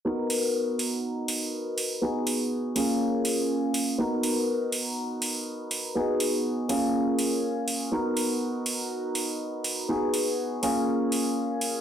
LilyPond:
<<
  \new Staff \with { instrumentName = "Grand piano" } { \time 4/4 \key b \lydian \tempo 4 = 122 <b dis' fis' ais'>1 | <b dis' fis' gis'>4. <ais cis' eis' gis'>2~ <ais cis' eis' gis'>8 | <b dis' fis' ais'>1 | <b dis' fis' gis'>4. <ais cis' eis' gis'>2~ <ais cis' eis' gis'>8 |
<b dis' fis' ais'>1 | <b dis' fis' gis'>4. <ais cis' eis' gis'>2~ <ais cis' eis' gis'>8 | }
  \new DrumStaff \with { instrumentName = "Drums" } \drummode { \time 4/4 r8 hho8 r8 hho8 r8 hho8 r8 hho8 | r8 hho8 r8 hho8 r8 hho8 r8 hho8 | r8 hho8 r8 hho8 r8 hho8 r8 hho8 | r8 hho8 r8 hho8 r8 hho8 r8 hho8 |
r8 hho8 r8 hho8 r8 hho8 r8 hho8 | r8 hho8 r8 hho8 r8 hho8 r8 hho8 | }
>>